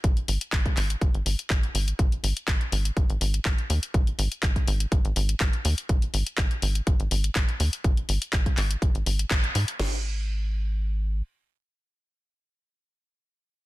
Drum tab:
CC |----------------|----------------|----------------|----------------|
HH |xxoxxxoxxxoxxxox|xxoxxxoxxxoxxxox|xxoxxxoxxxoxxxox|xxoxxxoxxxoxxxox|
CP |----x-x-----x---|----x-------x---|----x-------x---|----x-------x---|
SD |----------------|----------------|----------------|----------------|
BD |o---oo--o---o---|o---o---o---o---|o---oo--o---o---|o---o---o---o---|

CC |----------------|x---------------|----------------|
HH |xxoxxxoxxxoxxxox|----------------|----------------|
CP |----x-x-----x---|----------------|----------------|
SD |----------------|o---------------|----------------|
BD |o---oo--o---o---|----------------|----------------|